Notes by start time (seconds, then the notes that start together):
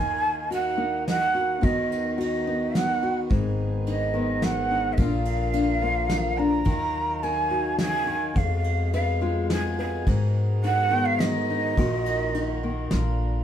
Already playing: D#2 D#3 A#3 G#5
0.51 F#4 F#5, ride
0.77 A#3 D#4
1.08 F#5, snare, ride
1.34 F#4
1.61 D#2 D#3 B3 D#4 F#4 D#5, kick, ride
1.92 ride
2.18 F#4 D#5, ride
2.47 B3 D#4
2.75 F#5, snare, ride
3.03 F#4
3.30 G#1 G#2 D#3 G#4, kick, ride
3.87 D#4 D#5, ride
4.14 D#3 B3
4.42 F#5, snare, ride
4.72 D#4
4.93 D#5
4.97 A#1 A#2 D3 F3 A#3 F5, kick, ride
5.01 D4 F4
5.25 ride
5.53 D4, ride
5.82 F3 A#3
6.09 snare, ride
6.38 D4 A#5
6.65 D#2 D#3 F#3, kick, ride
7.23 A#4 G#5, ride
7.50 D#4 F#4
7.78 C#3 G#5, snare, ride
8.07 D#3
8.34 F2 B2 F5, kick, ride
8.38 G#3
8.64 ride
8.93 B4 F5, ride
9.21 G#3 F4
9.50 G#5, snare, ride
9.79 B4 G#5
10.07 G#2 G#4 A#4, kick, ride
10.63 D#4 F#5, ride
10.91 D#3 B3
11.05 F5
11.19 D#5, snare, ride
11.50 D#4
11.76 A#1 A#2 D#3 A#3 D#4 F#4, kick, ride
12.06 ride
12.34 D#4, ride
12.63 D#3 A#3
12.91 A#1 A#2 D3 F4, snare, ride